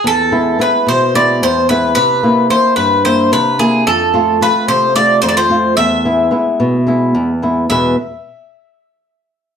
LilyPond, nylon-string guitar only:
\new Staff \with { instrumentName = "Nylon-string guitar" } { \time 7/8 \tempo 4 = 110 e,8 <gis b e'>8 <gis b e'>8 b,8 <gis b e'>8 e,8 <gis b e'>8 | c8 <bes c' e'>8 <bes c' e'>8 g,8 <bes c' e'>8 c8 <bes c' e'>8 | f,8 <a c' f'>8 <a c' f'>8 c8 <a c' f'>8 f,8 <a c' f'>8 | e,8 <gis b e'>8 <gis b e'>8 b,8 <gis b e'>8 e,8 <gis b e'>8 |
<e, b, gis b e' b'>8 r2. | }